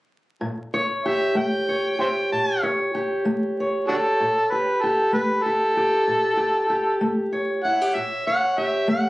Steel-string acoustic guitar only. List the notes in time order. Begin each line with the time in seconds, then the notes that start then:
0.41 A2
0.74 C#5
1.06 G4
1.35 A3
1.69 C#5
1.99 G4
2.32 A2
2.63 C#5
2.95 G4
3.25 A3
3.60 C#5
3.89 G4
4.20 A2
4.52 G4
4.83 G4
5.12 A3
5.46 G4
5.77 G4
6.07 A2
6.37 G4
6.70 G4
7.01 A3
7.32 C#5
7.65 E4
7.82 G4
7.95 A2
8.27 C#5
8.58 G4
8.88 A3